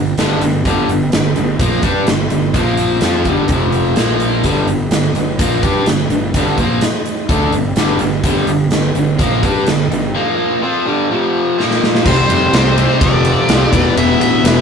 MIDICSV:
0, 0, Header, 1, 5, 480
1, 0, Start_track
1, 0, Tempo, 475436
1, 653, Time_signature, 4, 2, 24, 8
1, 14751, End_track
2, 0, Start_track
2, 0, Title_t, "Lead electric guitar"
2, 0, Program_c, 0, 29
2, 12186, Note_on_c, 0, 72, 94
2, 13153, Note_off_c, 0, 72, 0
2, 13157, Note_on_c, 0, 74, 98
2, 14066, Note_off_c, 0, 74, 0
2, 14109, Note_on_c, 0, 76, 120
2, 14339, Note_off_c, 0, 76, 0
2, 14351, Note_on_c, 0, 76, 94
2, 14751, Note_off_c, 0, 76, 0
2, 14751, End_track
3, 0, Start_track
3, 0, Title_t, "Overdriven electric guitar"
3, 0, Program_c, 1, 29
3, 0, Note_on_c, 1, 43, 67
3, 0, Note_on_c, 1, 50, 76
3, 130, Note_off_c, 1, 43, 0
3, 133, Note_off_c, 1, 50, 0
3, 187, Note_on_c, 1, 43, 91
3, 192, Note_on_c, 1, 50, 102
3, 198, Note_on_c, 1, 55, 101
3, 413, Note_off_c, 1, 43, 0
3, 415, Note_off_c, 1, 50, 0
3, 418, Note_off_c, 1, 55, 0
3, 424, Note_on_c, 1, 43, 66
3, 426, Note_on_c, 1, 50, 60
3, 610, Note_off_c, 1, 43, 0
3, 612, Note_off_c, 1, 50, 0
3, 660, Note_on_c, 1, 43, 80
3, 665, Note_on_c, 1, 50, 103
3, 669, Note_on_c, 1, 55, 93
3, 889, Note_off_c, 1, 43, 0
3, 892, Note_off_c, 1, 50, 0
3, 893, Note_off_c, 1, 55, 0
3, 911, Note_on_c, 1, 43, 57
3, 917, Note_on_c, 1, 50, 78
3, 1094, Note_off_c, 1, 43, 0
3, 1097, Note_off_c, 1, 50, 0
3, 1139, Note_on_c, 1, 43, 59
3, 1144, Note_on_c, 1, 50, 72
3, 1328, Note_off_c, 1, 43, 0
3, 1330, Note_off_c, 1, 50, 0
3, 1385, Note_on_c, 1, 43, 61
3, 1387, Note_on_c, 1, 50, 65
3, 1571, Note_off_c, 1, 43, 0
3, 1572, Note_off_c, 1, 50, 0
3, 1614, Note_on_c, 1, 46, 85
3, 1619, Note_on_c, 1, 53, 98
3, 1623, Note_on_c, 1, 58, 115
3, 1843, Note_off_c, 1, 53, 0
3, 1846, Note_off_c, 1, 46, 0
3, 1847, Note_off_c, 1, 58, 0
3, 1847, Note_on_c, 1, 55, 92
3, 1851, Note_on_c, 1, 62, 98
3, 1856, Note_on_c, 1, 67, 108
3, 2082, Note_off_c, 1, 55, 0
3, 2084, Note_off_c, 1, 62, 0
3, 2087, Note_off_c, 1, 67, 0
3, 2091, Note_on_c, 1, 43, 63
3, 2099, Note_on_c, 1, 50, 66
3, 2284, Note_off_c, 1, 43, 0
3, 2287, Note_off_c, 1, 50, 0
3, 2329, Note_on_c, 1, 43, 64
3, 2338, Note_on_c, 1, 50, 62
3, 2522, Note_off_c, 1, 43, 0
3, 2527, Note_off_c, 1, 50, 0
3, 2562, Note_on_c, 1, 46, 91
3, 2567, Note_on_c, 1, 53, 97
3, 2572, Note_on_c, 1, 58, 110
3, 3040, Note_off_c, 1, 46, 0
3, 3042, Note_off_c, 1, 53, 0
3, 3045, Note_off_c, 1, 58, 0
3, 3057, Note_on_c, 1, 53, 85
3, 3059, Note_on_c, 1, 60, 100
3, 3066, Note_on_c, 1, 65, 98
3, 3287, Note_off_c, 1, 53, 0
3, 3288, Note_off_c, 1, 60, 0
3, 3291, Note_off_c, 1, 65, 0
3, 3297, Note_on_c, 1, 43, 96
3, 3300, Note_on_c, 1, 50, 82
3, 3306, Note_on_c, 1, 55, 95
3, 3527, Note_off_c, 1, 43, 0
3, 3528, Note_off_c, 1, 50, 0
3, 3531, Note_off_c, 1, 55, 0
3, 3548, Note_on_c, 1, 41, 95
3, 3553, Note_on_c, 1, 48, 80
3, 3553, Note_on_c, 1, 53, 108
3, 4004, Note_off_c, 1, 53, 0
3, 4006, Note_off_c, 1, 48, 0
3, 4011, Note_on_c, 1, 46, 92
3, 4012, Note_off_c, 1, 41, 0
3, 4016, Note_on_c, 1, 53, 86
3, 4021, Note_on_c, 1, 58, 94
3, 4475, Note_on_c, 1, 43, 93
3, 4479, Note_off_c, 1, 46, 0
3, 4483, Note_on_c, 1, 50, 96
3, 4486, Note_off_c, 1, 53, 0
3, 4489, Note_off_c, 1, 58, 0
3, 4491, Note_on_c, 1, 55, 94
3, 4716, Note_off_c, 1, 43, 0
3, 4716, Note_off_c, 1, 50, 0
3, 4724, Note_off_c, 1, 55, 0
3, 4727, Note_on_c, 1, 43, 62
3, 4728, Note_on_c, 1, 50, 65
3, 4921, Note_off_c, 1, 43, 0
3, 4921, Note_off_c, 1, 50, 0
3, 4972, Note_on_c, 1, 43, 69
3, 4973, Note_on_c, 1, 50, 74
3, 5163, Note_off_c, 1, 43, 0
3, 5164, Note_off_c, 1, 50, 0
3, 5211, Note_on_c, 1, 43, 57
3, 5213, Note_on_c, 1, 50, 62
3, 5402, Note_off_c, 1, 43, 0
3, 5404, Note_off_c, 1, 50, 0
3, 5442, Note_on_c, 1, 46, 87
3, 5448, Note_on_c, 1, 53, 94
3, 5453, Note_on_c, 1, 58, 94
3, 5679, Note_off_c, 1, 46, 0
3, 5679, Note_off_c, 1, 53, 0
3, 5683, Note_off_c, 1, 58, 0
3, 5683, Note_on_c, 1, 55, 92
3, 5687, Note_on_c, 1, 62, 93
3, 5690, Note_on_c, 1, 67, 111
3, 5919, Note_off_c, 1, 55, 0
3, 5921, Note_off_c, 1, 62, 0
3, 5923, Note_off_c, 1, 67, 0
3, 5925, Note_on_c, 1, 43, 60
3, 5932, Note_on_c, 1, 50, 61
3, 6119, Note_off_c, 1, 43, 0
3, 6123, Note_off_c, 1, 50, 0
3, 6170, Note_on_c, 1, 43, 55
3, 6170, Note_on_c, 1, 50, 64
3, 6361, Note_off_c, 1, 50, 0
3, 6362, Note_off_c, 1, 43, 0
3, 6414, Note_on_c, 1, 43, 95
3, 6418, Note_on_c, 1, 50, 105
3, 6425, Note_on_c, 1, 55, 104
3, 6644, Note_off_c, 1, 43, 0
3, 6646, Note_off_c, 1, 50, 0
3, 6650, Note_off_c, 1, 55, 0
3, 6656, Note_on_c, 1, 46, 79
3, 6659, Note_on_c, 1, 53, 87
3, 6666, Note_on_c, 1, 58, 99
3, 6885, Note_off_c, 1, 46, 0
3, 6887, Note_off_c, 1, 53, 0
3, 6890, Note_off_c, 1, 58, 0
3, 7359, Note_on_c, 1, 50, 87
3, 7363, Note_on_c, 1, 57, 99
3, 7368, Note_on_c, 1, 62, 97
3, 7597, Note_off_c, 1, 50, 0
3, 7599, Note_off_c, 1, 57, 0
3, 7601, Note_off_c, 1, 62, 0
3, 7611, Note_on_c, 1, 50, 77
3, 7612, Note_on_c, 1, 43, 68
3, 7802, Note_off_c, 1, 50, 0
3, 7803, Note_off_c, 1, 43, 0
3, 7844, Note_on_c, 1, 43, 89
3, 7845, Note_on_c, 1, 50, 79
3, 7852, Note_on_c, 1, 55, 97
3, 8069, Note_off_c, 1, 43, 0
3, 8075, Note_off_c, 1, 50, 0
3, 8081, Note_on_c, 1, 43, 55
3, 8083, Note_off_c, 1, 55, 0
3, 8087, Note_on_c, 1, 50, 65
3, 8277, Note_off_c, 1, 43, 0
3, 8280, Note_off_c, 1, 50, 0
3, 8322, Note_on_c, 1, 43, 80
3, 8331, Note_on_c, 1, 50, 92
3, 8333, Note_on_c, 1, 55, 111
3, 8556, Note_off_c, 1, 43, 0
3, 8563, Note_off_c, 1, 50, 0
3, 8564, Note_off_c, 1, 55, 0
3, 8568, Note_on_c, 1, 43, 60
3, 8579, Note_on_c, 1, 50, 62
3, 8761, Note_off_c, 1, 43, 0
3, 8766, Note_off_c, 1, 50, 0
3, 8811, Note_on_c, 1, 43, 65
3, 8812, Note_on_c, 1, 50, 69
3, 9002, Note_off_c, 1, 43, 0
3, 9003, Note_off_c, 1, 50, 0
3, 9045, Note_on_c, 1, 43, 57
3, 9049, Note_on_c, 1, 50, 70
3, 9239, Note_off_c, 1, 43, 0
3, 9241, Note_off_c, 1, 50, 0
3, 9272, Note_on_c, 1, 46, 97
3, 9276, Note_on_c, 1, 53, 91
3, 9283, Note_on_c, 1, 58, 88
3, 9511, Note_off_c, 1, 53, 0
3, 9514, Note_off_c, 1, 46, 0
3, 9515, Note_on_c, 1, 55, 92
3, 9518, Note_off_c, 1, 58, 0
3, 9522, Note_on_c, 1, 62, 98
3, 9526, Note_on_c, 1, 67, 102
3, 9756, Note_off_c, 1, 55, 0
3, 9759, Note_off_c, 1, 62, 0
3, 9761, Note_off_c, 1, 67, 0
3, 9765, Note_on_c, 1, 43, 60
3, 9768, Note_on_c, 1, 50, 68
3, 9959, Note_off_c, 1, 43, 0
3, 9961, Note_off_c, 1, 50, 0
3, 10013, Note_on_c, 1, 43, 65
3, 10014, Note_on_c, 1, 50, 66
3, 10204, Note_off_c, 1, 43, 0
3, 10205, Note_off_c, 1, 50, 0
3, 10247, Note_on_c, 1, 53, 107
3, 10249, Note_on_c, 1, 46, 96
3, 10256, Note_on_c, 1, 58, 103
3, 10710, Note_off_c, 1, 53, 0
3, 10719, Note_off_c, 1, 46, 0
3, 10723, Note_on_c, 1, 53, 93
3, 10725, Note_on_c, 1, 60, 89
3, 10727, Note_off_c, 1, 58, 0
3, 10731, Note_on_c, 1, 65, 99
3, 10960, Note_off_c, 1, 53, 0
3, 10961, Note_off_c, 1, 60, 0
3, 10962, Note_on_c, 1, 43, 87
3, 10964, Note_off_c, 1, 65, 0
3, 10966, Note_on_c, 1, 50, 96
3, 10973, Note_on_c, 1, 55, 97
3, 11200, Note_off_c, 1, 43, 0
3, 11202, Note_off_c, 1, 50, 0
3, 11205, Note_off_c, 1, 55, 0
3, 11211, Note_on_c, 1, 41, 92
3, 11217, Note_on_c, 1, 48, 102
3, 11222, Note_on_c, 1, 53, 93
3, 11682, Note_off_c, 1, 53, 0
3, 11685, Note_off_c, 1, 41, 0
3, 11688, Note_off_c, 1, 48, 0
3, 11694, Note_on_c, 1, 53, 84
3, 11696, Note_on_c, 1, 46, 95
3, 11704, Note_on_c, 1, 58, 83
3, 12161, Note_off_c, 1, 46, 0
3, 12165, Note_on_c, 1, 48, 84
3, 12166, Note_off_c, 1, 53, 0
3, 12171, Note_off_c, 1, 58, 0
3, 12173, Note_on_c, 1, 55, 101
3, 12180, Note_on_c, 1, 60, 106
3, 12637, Note_off_c, 1, 48, 0
3, 12642, Note_off_c, 1, 55, 0
3, 12643, Note_off_c, 1, 60, 0
3, 12649, Note_on_c, 1, 48, 82
3, 12654, Note_on_c, 1, 55, 92
3, 12655, Note_on_c, 1, 60, 107
3, 12877, Note_off_c, 1, 48, 0
3, 12881, Note_off_c, 1, 55, 0
3, 12884, Note_off_c, 1, 60, 0
3, 12890, Note_on_c, 1, 48, 85
3, 12893, Note_on_c, 1, 55, 84
3, 12896, Note_on_c, 1, 60, 97
3, 13117, Note_off_c, 1, 48, 0
3, 13119, Note_off_c, 1, 55, 0
3, 13120, Note_off_c, 1, 60, 0
3, 13143, Note_on_c, 1, 41, 90
3, 13144, Note_on_c, 1, 48, 105
3, 13150, Note_on_c, 1, 53, 105
3, 13607, Note_off_c, 1, 41, 0
3, 13612, Note_off_c, 1, 48, 0
3, 13615, Note_off_c, 1, 53, 0
3, 13619, Note_on_c, 1, 41, 80
3, 13624, Note_on_c, 1, 48, 88
3, 13627, Note_on_c, 1, 53, 86
3, 13843, Note_off_c, 1, 41, 0
3, 13845, Note_off_c, 1, 48, 0
3, 13846, Note_off_c, 1, 53, 0
3, 13860, Note_on_c, 1, 40, 90
3, 13863, Note_on_c, 1, 47, 97
3, 13872, Note_on_c, 1, 52, 104
3, 14103, Note_off_c, 1, 40, 0
3, 14106, Note_off_c, 1, 47, 0
3, 14110, Note_off_c, 1, 52, 0
3, 14115, Note_on_c, 1, 40, 100
3, 14118, Note_on_c, 1, 47, 100
3, 14122, Note_on_c, 1, 52, 109
3, 14573, Note_off_c, 1, 40, 0
3, 14581, Note_off_c, 1, 47, 0
3, 14584, Note_off_c, 1, 52, 0
3, 14585, Note_on_c, 1, 40, 90
3, 14593, Note_on_c, 1, 47, 83
3, 14596, Note_on_c, 1, 52, 90
3, 14751, Note_off_c, 1, 40, 0
3, 14751, Note_off_c, 1, 47, 0
3, 14751, Note_off_c, 1, 52, 0
3, 14751, End_track
4, 0, Start_track
4, 0, Title_t, "Fingered electric bass"
4, 0, Program_c, 2, 33
4, 0, Note_on_c, 2, 31, 74
4, 156, Note_off_c, 2, 31, 0
4, 180, Note_on_c, 2, 31, 83
4, 400, Note_off_c, 2, 31, 0
4, 419, Note_on_c, 2, 31, 88
4, 640, Note_off_c, 2, 31, 0
4, 654, Note_on_c, 2, 31, 92
4, 877, Note_off_c, 2, 31, 0
4, 901, Note_on_c, 2, 31, 75
4, 1120, Note_off_c, 2, 31, 0
4, 1144, Note_on_c, 2, 31, 87
4, 1362, Note_off_c, 2, 31, 0
4, 1385, Note_on_c, 2, 31, 83
4, 1603, Note_off_c, 2, 31, 0
4, 1610, Note_on_c, 2, 34, 95
4, 1834, Note_off_c, 2, 34, 0
4, 1846, Note_on_c, 2, 43, 93
4, 2072, Note_off_c, 2, 43, 0
4, 2101, Note_on_c, 2, 31, 82
4, 2320, Note_off_c, 2, 31, 0
4, 2334, Note_on_c, 2, 31, 84
4, 2556, Note_off_c, 2, 31, 0
4, 2565, Note_on_c, 2, 34, 92
4, 3014, Note_off_c, 2, 34, 0
4, 3045, Note_on_c, 2, 41, 93
4, 3271, Note_off_c, 2, 41, 0
4, 3280, Note_on_c, 2, 31, 86
4, 3508, Note_off_c, 2, 31, 0
4, 3524, Note_on_c, 2, 29, 81
4, 3973, Note_off_c, 2, 29, 0
4, 4008, Note_on_c, 2, 34, 89
4, 4455, Note_off_c, 2, 34, 0
4, 4483, Note_on_c, 2, 31, 85
4, 4709, Note_off_c, 2, 31, 0
4, 4715, Note_on_c, 2, 31, 80
4, 4945, Note_off_c, 2, 31, 0
4, 4953, Note_on_c, 2, 31, 84
4, 5184, Note_off_c, 2, 31, 0
4, 5191, Note_on_c, 2, 31, 74
4, 5423, Note_off_c, 2, 31, 0
4, 5439, Note_on_c, 2, 34, 80
4, 5667, Note_off_c, 2, 34, 0
4, 5682, Note_on_c, 2, 43, 89
4, 5909, Note_off_c, 2, 43, 0
4, 5916, Note_on_c, 2, 31, 73
4, 6145, Note_off_c, 2, 31, 0
4, 6155, Note_on_c, 2, 31, 83
4, 6385, Note_off_c, 2, 31, 0
4, 6400, Note_on_c, 2, 31, 86
4, 6627, Note_off_c, 2, 31, 0
4, 6635, Note_on_c, 2, 34, 84
4, 6865, Note_off_c, 2, 34, 0
4, 7361, Note_on_c, 2, 38, 93
4, 7581, Note_off_c, 2, 38, 0
4, 7587, Note_on_c, 2, 31, 89
4, 7820, Note_off_c, 2, 31, 0
4, 7832, Note_on_c, 2, 31, 96
4, 8063, Note_off_c, 2, 31, 0
4, 8076, Note_on_c, 2, 31, 83
4, 8305, Note_off_c, 2, 31, 0
4, 8313, Note_on_c, 2, 31, 95
4, 8544, Note_off_c, 2, 31, 0
4, 8550, Note_on_c, 2, 31, 79
4, 8782, Note_off_c, 2, 31, 0
4, 8793, Note_on_c, 2, 31, 80
4, 9024, Note_off_c, 2, 31, 0
4, 9037, Note_on_c, 2, 31, 73
4, 9266, Note_off_c, 2, 31, 0
4, 9276, Note_on_c, 2, 34, 83
4, 9506, Note_off_c, 2, 34, 0
4, 9518, Note_on_c, 2, 43, 93
4, 9747, Note_off_c, 2, 43, 0
4, 9757, Note_on_c, 2, 31, 74
4, 9987, Note_off_c, 2, 31, 0
4, 10003, Note_on_c, 2, 31, 81
4, 10230, Note_off_c, 2, 31, 0
4, 12171, Note_on_c, 2, 36, 101
4, 12332, Note_off_c, 2, 36, 0
4, 12408, Note_on_c, 2, 41, 87
4, 12570, Note_off_c, 2, 41, 0
4, 12652, Note_on_c, 2, 36, 102
4, 12974, Note_off_c, 2, 36, 0
4, 13132, Note_on_c, 2, 29, 88
4, 13453, Note_off_c, 2, 29, 0
4, 13619, Note_on_c, 2, 36, 90
4, 13778, Note_off_c, 2, 36, 0
4, 13858, Note_on_c, 2, 28, 92
4, 14017, Note_off_c, 2, 28, 0
4, 14097, Note_on_c, 2, 28, 108
4, 14257, Note_off_c, 2, 28, 0
4, 14341, Note_on_c, 2, 33, 83
4, 14499, Note_off_c, 2, 33, 0
4, 14576, Note_on_c, 2, 28, 103
4, 14751, Note_off_c, 2, 28, 0
4, 14751, End_track
5, 0, Start_track
5, 0, Title_t, "Drums"
5, 177, Note_on_c, 9, 42, 83
5, 189, Note_on_c, 9, 38, 108
5, 278, Note_off_c, 9, 42, 0
5, 290, Note_off_c, 9, 38, 0
5, 418, Note_on_c, 9, 42, 67
5, 519, Note_off_c, 9, 42, 0
5, 659, Note_on_c, 9, 36, 96
5, 662, Note_on_c, 9, 42, 82
5, 760, Note_off_c, 9, 36, 0
5, 763, Note_off_c, 9, 42, 0
5, 901, Note_on_c, 9, 42, 63
5, 1002, Note_off_c, 9, 42, 0
5, 1131, Note_on_c, 9, 42, 87
5, 1143, Note_on_c, 9, 38, 126
5, 1232, Note_off_c, 9, 42, 0
5, 1244, Note_off_c, 9, 38, 0
5, 1370, Note_on_c, 9, 42, 61
5, 1471, Note_off_c, 9, 42, 0
5, 1609, Note_on_c, 9, 42, 97
5, 1610, Note_on_c, 9, 36, 116
5, 1710, Note_off_c, 9, 42, 0
5, 1711, Note_off_c, 9, 36, 0
5, 1842, Note_on_c, 9, 42, 73
5, 1848, Note_on_c, 9, 36, 104
5, 1943, Note_off_c, 9, 42, 0
5, 1949, Note_off_c, 9, 36, 0
5, 2087, Note_on_c, 9, 42, 99
5, 2099, Note_on_c, 9, 38, 117
5, 2188, Note_off_c, 9, 42, 0
5, 2200, Note_off_c, 9, 38, 0
5, 2325, Note_on_c, 9, 42, 83
5, 2425, Note_off_c, 9, 42, 0
5, 2564, Note_on_c, 9, 42, 86
5, 2567, Note_on_c, 9, 36, 96
5, 2665, Note_off_c, 9, 42, 0
5, 2668, Note_off_c, 9, 36, 0
5, 2800, Note_on_c, 9, 42, 69
5, 2901, Note_off_c, 9, 42, 0
5, 3036, Note_on_c, 9, 42, 98
5, 3048, Note_on_c, 9, 38, 108
5, 3137, Note_off_c, 9, 42, 0
5, 3149, Note_off_c, 9, 38, 0
5, 3279, Note_on_c, 9, 42, 62
5, 3286, Note_on_c, 9, 36, 101
5, 3380, Note_off_c, 9, 42, 0
5, 3387, Note_off_c, 9, 36, 0
5, 3513, Note_on_c, 9, 42, 91
5, 3524, Note_on_c, 9, 36, 117
5, 3614, Note_off_c, 9, 42, 0
5, 3625, Note_off_c, 9, 36, 0
5, 3760, Note_on_c, 9, 42, 61
5, 3861, Note_off_c, 9, 42, 0
5, 3997, Note_on_c, 9, 42, 85
5, 4009, Note_on_c, 9, 38, 106
5, 4098, Note_off_c, 9, 42, 0
5, 4110, Note_off_c, 9, 38, 0
5, 4240, Note_on_c, 9, 42, 72
5, 4341, Note_off_c, 9, 42, 0
5, 4479, Note_on_c, 9, 42, 88
5, 4484, Note_on_c, 9, 36, 89
5, 4580, Note_off_c, 9, 42, 0
5, 4585, Note_off_c, 9, 36, 0
5, 4721, Note_on_c, 9, 42, 62
5, 4822, Note_off_c, 9, 42, 0
5, 4956, Note_on_c, 9, 42, 92
5, 4968, Note_on_c, 9, 38, 108
5, 5057, Note_off_c, 9, 42, 0
5, 5069, Note_off_c, 9, 38, 0
5, 5199, Note_on_c, 9, 42, 59
5, 5300, Note_off_c, 9, 42, 0
5, 5442, Note_on_c, 9, 42, 103
5, 5445, Note_on_c, 9, 36, 111
5, 5543, Note_off_c, 9, 42, 0
5, 5546, Note_off_c, 9, 36, 0
5, 5682, Note_on_c, 9, 42, 65
5, 5685, Note_on_c, 9, 36, 109
5, 5783, Note_off_c, 9, 42, 0
5, 5786, Note_off_c, 9, 36, 0
5, 5919, Note_on_c, 9, 42, 94
5, 5931, Note_on_c, 9, 38, 105
5, 6020, Note_off_c, 9, 42, 0
5, 6032, Note_off_c, 9, 38, 0
5, 6162, Note_on_c, 9, 42, 71
5, 6263, Note_off_c, 9, 42, 0
5, 6401, Note_on_c, 9, 42, 92
5, 6403, Note_on_c, 9, 36, 100
5, 6502, Note_off_c, 9, 42, 0
5, 6504, Note_off_c, 9, 36, 0
5, 6638, Note_on_c, 9, 42, 67
5, 6641, Note_on_c, 9, 36, 95
5, 6739, Note_off_c, 9, 42, 0
5, 6742, Note_off_c, 9, 36, 0
5, 6877, Note_on_c, 9, 42, 103
5, 6890, Note_on_c, 9, 38, 111
5, 6978, Note_off_c, 9, 42, 0
5, 6991, Note_off_c, 9, 38, 0
5, 7123, Note_on_c, 9, 42, 68
5, 7224, Note_off_c, 9, 42, 0
5, 7361, Note_on_c, 9, 36, 116
5, 7364, Note_on_c, 9, 42, 93
5, 7462, Note_off_c, 9, 36, 0
5, 7465, Note_off_c, 9, 42, 0
5, 7598, Note_on_c, 9, 42, 68
5, 7699, Note_off_c, 9, 42, 0
5, 7833, Note_on_c, 9, 42, 85
5, 7845, Note_on_c, 9, 38, 103
5, 7934, Note_off_c, 9, 42, 0
5, 7946, Note_off_c, 9, 38, 0
5, 8066, Note_on_c, 9, 42, 77
5, 8167, Note_off_c, 9, 42, 0
5, 8314, Note_on_c, 9, 42, 83
5, 8316, Note_on_c, 9, 36, 97
5, 8415, Note_off_c, 9, 42, 0
5, 8417, Note_off_c, 9, 36, 0
5, 8552, Note_on_c, 9, 42, 61
5, 8653, Note_off_c, 9, 42, 0
5, 8790, Note_on_c, 9, 42, 91
5, 8802, Note_on_c, 9, 38, 104
5, 8891, Note_off_c, 9, 42, 0
5, 8903, Note_off_c, 9, 38, 0
5, 9037, Note_on_c, 9, 42, 61
5, 9138, Note_off_c, 9, 42, 0
5, 9279, Note_on_c, 9, 42, 91
5, 9280, Note_on_c, 9, 36, 110
5, 9379, Note_off_c, 9, 42, 0
5, 9381, Note_off_c, 9, 36, 0
5, 9521, Note_on_c, 9, 36, 96
5, 9525, Note_on_c, 9, 42, 69
5, 9622, Note_off_c, 9, 36, 0
5, 9626, Note_off_c, 9, 42, 0
5, 9758, Note_on_c, 9, 42, 91
5, 9770, Note_on_c, 9, 38, 106
5, 9859, Note_off_c, 9, 42, 0
5, 9871, Note_off_c, 9, 38, 0
5, 10012, Note_on_c, 9, 42, 70
5, 10113, Note_off_c, 9, 42, 0
5, 11709, Note_on_c, 9, 38, 63
5, 11810, Note_off_c, 9, 38, 0
5, 11823, Note_on_c, 9, 38, 69
5, 11923, Note_off_c, 9, 38, 0
5, 11949, Note_on_c, 9, 38, 97
5, 12050, Note_off_c, 9, 38, 0
5, 12067, Note_on_c, 9, 38, 84
5, 12168, Note_off_c, 9, 38, 0
5, 12172, Note_on_c, 9, 36, 106
5, 12172, Note_on_c, 9, 49, 106
5, 12273, Note_off_c, 9, 36, 0
5, 12273, Note_off_c, 9, 49, 0
5, 12416, Note_on_c, 9, 51, 72
5, 12517, Note_off_c, 9, 51, 0
5, 12654, Note_on_c, 9, 51, 108
5, 12666, Note_on_c, 9, 38, 125
5, 12755, Note_off_c, 9, 51, 0
5, 12767, Note_off_c, 9, 38, 0
5, 12899, Note_on_c, 9, 51, 69
5, 13000, Note_off_c, 9, 51, 0
5, 13137, Note_on_c, 9, 36, 126
5, 13139, Note_on_c, 9, 51, 105
5, 13238, Note_off_c, 9, 36, 0
5, 13240, Note_off_c, 9, 51, 0
5, 13373, Note_on_c, 9, 51, 72
5, 13474, Note_off_c, 9, 51, 0
5, 13616, Note_on_c, 9, 51, 106
5, 13628, Note_on_c, 9, 38, 120
5, 13717, Note_off_c, 9, 51, 0
5, 13729, Note_off_c, 9, 38, 0
5, 13859, Note_on_c, 9, 36, 110
5, 13865, Note_on_c, 9, 51, 92
5, 13960, Note_off_c, 9, 36, 0
5, 13966, Note_off_c, 9, 51, 0
5, 14107, Note_on_c, 9, 51, 108
5, 14208, Note_off_c, 9, 51, 0
5, 14348, Note_on_c, 9, 51, 81
5, 14449, Note_off_c, 9, 51, 0
5, 14587, Note_on_c, 9, 51, 124
5, 14599, Note_on_c, 9, 38, 127
5, 14688, Note_off_c, 9, 51, 0
5, 14700, Note_off_c, 9, 38, 0
5, 14751, End_track
0, 0, End_of_file